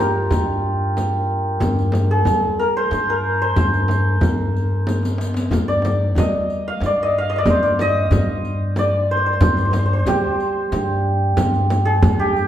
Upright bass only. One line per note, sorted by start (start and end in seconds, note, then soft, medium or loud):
0.00 0.27 G2 medium
0.30 1.57 G2 medium
1.61 2.22 G2 medium
2.26 2.87 G3 medium
2.91 3.52 G2 medium
3.56 4.17 G2 medium
4.21 5.48 G2 medium
5.51 6.13 G2 medium
6.16 6.78 G3 medium
6.81 7.43 G2 medium
7.46 8.08 G2 medium
8.11 9.38 G2 medium
9.40 10.03 G2 loud
10.07 10.68 G3 medium
10.72 11.34 G2 medium
11.37 11.99 G2 medium
12.03 12.48 G2 loud